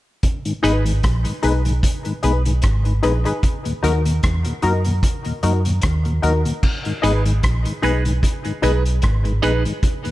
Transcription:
0.23 kick, closed hi-hat
0.45 G#2 D#3, closed hi-hat
0.63 G#1 G#3 B3 D#4 G#4 B4, closed hi-hat
0.86 G#2 D#3, closed hi-hat
1.03 A#1, kick, cross-stick, closed hi-hat
1.25 G#2 D#3, closed hi-hat
1.43 B1 G#3 B3 D#4 G#4 B4, closed hi-hat
1.65 G#2 D#3, closed hi-hat
1.83 kick, closed hi-hat
2.05 G#2 D#3, closed hi-hat
2.23 B1 G#3 B3 D#4 G#4 B4, closed hi-hat
2.45 G#2 D#3, closed hi-hat
2.62 G#1, kick, cross-stick, closed hi-hat
2.85 G#2 D#3, closed hi-hat
3.02 A#1 G#3 B3 D#4 G#4 B4, cross-stick, closed hi-hat
3.25 G#2 D#3 D#4 G#4 B4, closed hi-hat
3.43 kick, closed hi-hat
3.65 D#2 A#2, closed hi-hat
3.83 D#2 F#3 A#3 D#4 F#4 A#4, closed hi-hat
4.05 D#2 A#2, closed hi-hat
4.23 E2, kick, cross-stick, closed hi-hat
4.45 D#2 A#2, closed hi-hat
4.62 F#2 F#3 A#3 D#4 F#4 A#4, closed hi-hat
4.84 D#2 A#2, closed hi-hat
5.03 kick, closed hi-hat
5.25 D#2 A#2, closed hi-hat
5.43 F#2 F#3 A#3 D#4 F#4 A#4, closed hi-hat
5.65 D#2 A#2, closed hi-hat
5.82 D#2, kick, cross-stick, closed hi-hat
6.05 D#2 A#2, closed hi-hat
6.22 D#2 F#3 A#3 D#4 F#4 A#4, closed hi-hat
6.45 D#2 A#2, closed hi-hat
6.63 kick, crash
6.85 G#2 D#3, closed hi-hat
7.02 G#1 G#3 B3 D#4 G#4 B4, closed hi-hat
7.25 G#2 D#3, closed hi-hat
7.43 A#1, kick, cross-stick, closed hi-hat
7.65 G#2 D#3, closed hi-hat
7.82 B1 G#3 B3 D#4 G#4 B4, closed hi-hat
8.05 G#2 D#3, closed hi-hat
8.23 kick, closed hi-hat
8.45 G#2 D#3, closed hi-hat
8.62 B1 G#3 B3 D#4 G#4 B4, closed hi-hat
8.85 closed hi-hat
9.02 G#1, kick, cross-stick, closed hi-hat
9.25 G#2 D#3, closed hi-hat
9.42 A#1 G#3 B3 D#4 G#4 B4, closed hi-hat
9.65 G#2 D#3, closed hi-hat
9.83 kick, closed hi-hat
10.05 D#2 A#2, closed hi-hat

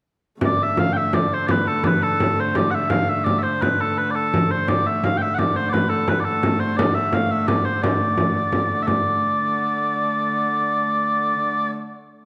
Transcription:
0.41 D3 A3 D5, frame drum
0.59 frame drum
0.63 E5
0.77 F5, frame drum
0.93 E5 G5
1.13 D5, frame drum
1.33 C5
1.47 D5, frame drum
1.51 B4
1.67 A4, frame drum
1.84 B4 D5, frame drum
2.02 A4
2.20 frame drum
2.40 C5
2.55 D5, frame drum
2.71 E5 F#5, frame drum
2.90 F5, frame drum
3.09 E5
3.24 D5, frame drum
3.39 E5
3.43 C5
3.62 B4, frame drum
3.80 A4
3.98 B4
4.11 D5
4.15 A4
4.34 frame drum
4.51 C5
4.68 D3 A3 D5, frame drum
4.87 E5, frame drum
5.04 F5, frame drum
5.17 G5
5.22 E5
5.34 F#5
5.38 D5, frame drum
5.56 C5
5.69 B4 D5
5.74 frame drum
5.89 A4, frame drum
6.08 B4, frame drum
6.20 D5
6.24 A4
6.43 frame drum
6.60 C5
6.76 D5, frame drum
6.95 E5, frame drum
7.13 F5, frame drum
7.31 E5
7.48 D5, frame drum
7.65 C5
7.82 D5, frame drum
8.17 frame drum
8.52 frame drum
8.83 E5
8.87 D3 A3 D5, frame drum

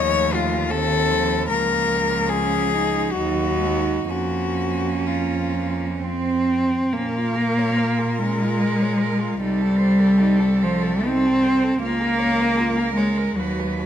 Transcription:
Already playing: D#2 F3 A3
0.00 C#5
0.35 F4
0.71 D#3 C4 A4
1.11 F3
1.49 C#2 F3 A#3 A#4
2.29 C#4 G#4
2.74 D#4
3.12 D#2 F#3 F#4
3.16 D#4
3.59 G#3
4.07 F2 A#3 C#4 F#4
5.07 F4
6.02 C4
6.92 A#2 A#3 C#4 A#4
7.16 F4
7.35 A#4
7.58 C#5
7.76 A#4
8.00 F4
8.18 G#3 C#4
8.42 F4
8.61 A#4
8.82 C#5
9.00 A#4
9.20 F4
9.40 C2 G3 D#4 A4
9.61 A4
9.79 C5
10.00 A4
10.19 D#4
10.39 A4
10.62 F3 C5
10.83 A4
11.04 C4 D#4
11.26 A4
11.43 C5
11.63 A4
11.80 C#2 A#3 F4
11.84 A#4
12.01 A#4
12.19 C#5
12.41 A#4
12.58 F4
12.79 A#4
12.96 G#3 C#5
13.17 A#4
13.36 D#2 F#3 F#4
13.40 B4
13.59 B4
13.79 F#4

